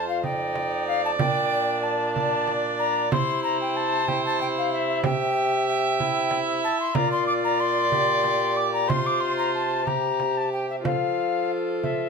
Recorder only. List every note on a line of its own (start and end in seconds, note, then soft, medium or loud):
0.09 0.23 F5 medium
0.24 0.87 G5 loud
0.88 1.03 F5 loud
1.05 1.11 A5 medium
1.20 1.85 G5 loud
1.83 2.52 A5 medium
2.79 3.11 A#5 loud
3.13 3.43 C6 loud
3.44 3.60 A#5 loud
3.61 3.78 G5 medium
3.76 4.10 A5 loud
4.08 4.24 G5 medium
4.26 4.41 A5 loud
4.41 4.47 G5 loud
4.58 4.73 F5 medium
4.73 5.04 E5 loud
5.05 5.67 G5 loud
5.69 6.39 G5 loud
6.64 6.80 A5 loud
6.80 6.96 C6 loud
6.94 7.11 A#5 loud
7.12 7.26 C6 loud
7.27 7.33 D6 loud
7.44 7.62 A#5 loud
7.60 8.58 C6 loud
8.57 8.73 D6 loud
8.74 8.90 A#5 loud
8.89 9.08 C6 loud
9.06 9.22 D6 loud
9.21 9.37 C6 loud
9.38 9.54 A#5 medium
9.55 9.89 A5 medium
9.87 10.39 A#5 medium
10.37 10.52 A5 medium
10.52 10.68 G5 medium
10.70 10.76 E5 medium
10.85 11.51 F5 medium
11.83 12.09 E5 medium